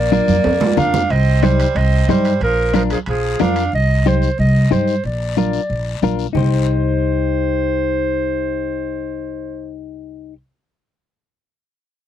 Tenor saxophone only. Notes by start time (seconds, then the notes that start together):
Already playing: A#3
0.79 D4
1.11 C4
1.45 G3
1.77 C4
2.11 G3
2.43 F3
2.76 F3
2.92 F3
3.08 F3
3.41 D4